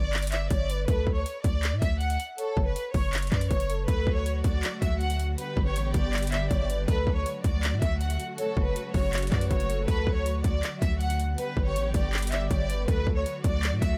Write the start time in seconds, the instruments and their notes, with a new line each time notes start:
Already playing: 808-style bass G1, violin section D5
0.13 clap, closed hi-hat
0.18 closed hi-hat
0.22 closed hi-hat
0.27 closed hi-hat
0.32 soft synth lead D5, violin section E5, clap, closed hi-hat
0.50 808-style bass G1, soft synth lead C#5, violin section D5, kick, closed hi-hat
0.69 soft synth lead B4, closed hi-hat
0.88 808-style bass D2, soft synth lead A4, violin section B4, kick, closed hi-hat
1.07 808-style bass D2, kick
1.16 violin section C#5
1.26 closed hi-hat
1.44 808-style bass D2, violin section D5, kick, closed hi-hat
1.63 clap, closed hi-hat
1.72 808-style bass A2
1.82 808-style bass D2, violin section E5, kick, closed hi-hat
2.00 violin section F#5, closed hi-hat
2.10 closed hi-hat
2.20 closed hi-hat
2.38 violin section A4, soft synth lead C#5, closed hi-hat
2.57 808-style bass F#1, kick
2.66 violin section B4
2.76 closed hi-hat
2.94 808-style bass F#1, violin section C#5, kick, open hi-hat
3.13 clap, closed hi-hat
3.18 closed hi-hat
3.22 closed hi-hat
3.27 closed hi-hat
3.32 808-style bass F#2, soft synth lead B4, violin section D5, kick, clap, closed hi-hat
3.41 closed hi-hat
3.51 808-style bass F#1, violin section C#5, kick, closed hi-hat
3.60 closed hi-hat
3.69 soft synth lead A4, closed hi-hat
3.88 808-style bass D2, string section D3 F#3 A3 F#4, soft synth lead A4, violin section B4, kick, closed hi-hat
4.07 808-style bass D2, kick
4.16 violin section C#5
4.26 closed hi-hat
4.44 808-style bass D2, violin section D5, kick, closed hi-hat
4.63 clap, closed hi-hat
4.82 808-style bass D2, violin section E5, kick, closed hi-hat
5.00 violin section F#5, closed hi-hat
5.10 closed hi-hat
5.20 closed hi-hat
5.38 string section G3 B3 G4, violin section B4, soft synth lead B4, closed hi-hat
5.57 808-style bass G1, kick
5.66 violin section C#5
5.75 808-style bass A1, closed hi-hat
5.94 808-style bass G1, violin section D5, kick, closed hi-hat
6.13 clap, closed hi-hat
6.18 closed hi-hat
6.23 closed hi-hat
6.27 closed hi-hat
6.32 soft synth lead D5, violin section E5, clap, closed hi-hat
6.50 808-style bass G1, soft synth lead C#5, violin section D5, kick, closed hi-hat
6.69 soft synth lead B4, closed hi-hat
6.88 808-style bass D2, string section F#3 A3 F#4, soft synth lead A4, violin section B4, kick, closed hi-hat
7.07 808-style bass D2, kick
7.16 violin section C#5
7.26 closed hi-hat
7.44 808-style bass D2, violin section D5, kick, closed hi-hat
7.63 clap, closed hi-hat
7.72 808-style bass A2
7.82 808-style bass D2, violin section E5, kick, closed hi-hat
8.01 violin section F#5, closed hi-hat
8.10 closed hi-hat
8.20 closed hi-hat
8.38 string section C#3 F#3, violin section A4, soft synth lead C#5, closed hi-hat
8.57 808-style bass F#1, kick
8.66 violin section B4
8.76 closed hi-hat
8.94 808-style bass F#1, violin section C#5, kick, open hi-hat
9.13 clap, closed hi-hat
9.18 closed hi-hat
9.22 closed hi-hat
9.27 closed hi-hat
9.31 808-style bass F#2, soft synth lead B4, violin section D5, kick, clap, closed hi-hat
9.41 closed hi-hat
9.51 808-style bass F#1, violin section C#5, kick, closed hi-hat
9.60 closed hi-hat
9.69 soft synth lead A4, closed hi-hat
9.88 808-style bass D2, string section D3 F#3, soft synth lead A4, violin section B4, kick, closed hi-hat
10.07 808-style bass D2, kick
10.16 violin section C#5
10.26 closed hi-hat
10.44 808-style bass D2, violin section D5, kick, closed hi-hat
10.63 clap, closed hi-hat
10.82 808-style bass D2, violin section E5, kick, closed hi-hat
11.00 violin section F#5, closed hi-hat
11.10 closed hi-hat
11.20 closed hi-hat
11.38 string section G3 B3 G4, violin section B4, soft synth lead B4, closed hi-hat
11.57 808-style bass G1, kick
11.67 violin section C#5
11.76 808-style bass A1, closed hi-hat
11.94 808-style bass G1, violin section D5, kick, closed hi-hat
12.13 clap, closed hi-hat
12.18 closed hi-hat
12.22 closed hi-hat
12.27 closed hi-hat
12.32 soft synth lead D5, violin section E5, clap, closed hi-hat
12.50 808-style bass G1, soft synth lead C#5, violin section D5, kick, closed hi-hat
12.70 soft synth lead B4, closed hi-hat
12.88 808-style bass D2, string section F#3 A3 F#4, soft synth lead A4, violin section B4, kick, closed hi-hat
13.07 808-style bass D2, kick
13.16 violin section C#5
13.26 closed hi-hat
13.44 808-style bass D2, violin section D5, kick, closed hi-hat
13.63 clap, closed hi-hat
13.72 808-style bass A2
13.82 808-style bass D2, violin section E5, kick, closed hi-hat